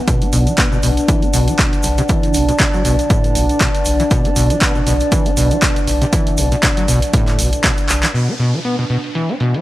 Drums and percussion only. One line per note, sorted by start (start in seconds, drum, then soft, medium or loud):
0.08 kick loud
0.08 closed hi-hat medium
0.08 shaker medium
0.21 closed hi-hat soft
0.21 shaker soft
0.33 open hi-hat loud
0.33 shaker medium
0.47 closed hi-hat soft
0.47 shaker soft
0.58 kick loud
0.58 clap loud
0.58 closed hi-hat medium
0.58 shaker soft
0.72 shaker soft
0.83 open hi-hat medium
0.83 shaker medium
0.97 closed hi-hat medium
0.97 shaker soft
1.08 kick loud
1.08 closed hi-hat medium
1.08 shaker soft
1.22 closed hi-hat soft
1.22 shaker soft
1.34 open hi-hat loud
1.34 shaker medium
1.48 closed hi-hat medium
1.48 shaker soft
1.59 kick loud
1.59 clap loud
1.59 closed hi-hat medium
1.59 shaker soft
1.73 closed hi-hat soft
1.73 shaker soft
1.83 open hi-hat medium
1.83 shaker medium
1.98 closed hi-hat medium
1.98 shaker soft
2.08 kick loud
2.08 closed hi-hat medium
2.08 shaker soft
2.23 closed hi-hat soft
2.23 shaker soft
2.34 open hi-hat loud
2.34 shaker medium
2.49 closed hi-hat medium
2.49 shaker soft
2.58 kick loud
2.58 clap loud
2.58 closed hi-hat medium
2.58 shaker soft
2.74 shaker soft
2.85 open hi-hat medium
2.85 shaker medium
2.99 closed hi-hat medium
2.99 shaker soft
3.10 kick loud
3.10 closed hi-hat medium
3.10 shaker soft
3.24 closed hi-hat soft
3.24 shaker soft
3.35 open hi-hat loud
3.35 shaker medium
3.49 closed hi-hat soft
3.49 shaker soft
3.60 kick loud
3.60 clap loud
3.60 closed hi-hat medium
3.60 shaker soft
3.75 closed hi-hat soft
3.75 shaker soft
3.85 open hi-hat medium
3.85 shaker medium
4.00 closed hi-hat medium
4.00 shaker soft
4.11 kick loud
4.11 closed hi-hat medium
4.11 shaker soft
4.25 closed hi-hat soft
4.25 shaker soft
4.36 open hi-hat loud
4.36 shaker medium
4.50 closed hi-hat medium
4.50 shaker soft
4.61 kick loud
4.61 clap loud
4.61 closed hi-hat medium
4.61 shaker medium
4.75 shaker soft
4.87 open hi-hat medium
4.87 shaker medium
5.00 closed hi-hat medium
5.00 shaker soft
5.12 kick loud
5.12 closed hi-hat medium
5.12 shaker medium
5.26 closed hi-hat soft
5.26 shaker soft
5.37 open hi-hat loud
5.37 shaker medium
5.51 closed hi-hat medium
5.51 shaker soft
5.62 kick loud
5.62 clap loud
5.62 closed hi-hat medium
5.62 shaker soft
5.76 closed hi-hat soft
5.76 shaker soft
5.87 open hi-hat medium
5.87 shaker medium
6.02 closed hi-hat medium
6.02 shaker soft
6.13 kick loud
6.13 closed hi-hat medium
6.13 shaker soft
6.27 closed hi-hat soft
6.27 shaker soft
6.37 open hi-hat loud
6.37 shaker medium
6.51 closed hi-hat medium
6.51 shaker soft
6.63 kick loud
6.63 clap loud
6.63 closed hi-hat medium
6.63 shaker soft
6.77 closed hi-hat soft
6.77 shaker soft
6.88 open hi-hat medium
6.88 shaker medium
7.02 closed hi-hat medium
7.02 shaker soft
7.13 kick loud
7.13 closed hi-hat medium
7.13 shaker soft
7.28 clap soft
7.28 closed hi-hat soft
7.28 shaker soft
7.39 open hi-hat loud
7.39 shaker medium
7.53 closed hi-hat medium
7.53 shaker soft
7.63 kick loud
7.63 clap loud
7.63 closed hi-hat medium
7.63 shaker medium
7.77 closed hi-hat soft
7.77 shaker soft
7.89 clap medium
7.89 open hi-hat medium
7.89 shaker medium
8.03 clap loud
8.03 closed hi-hat medium
8.03 shaker soft
8.14 closed hi-hat medium
8.14 crash medium
8.28 closed hi-hat soft
8.39 closed hi-hat medium
8.54 closed hi-hat soft
8.65 closed hi-hat medium
8.90 closed hi-hat medium
9.04 closed hi-hat medium
9.15 closed hi-hat medium
9.29 closed hi-hat soft
9.40 closed hi-hat medium
9.54 closed hi-hat medium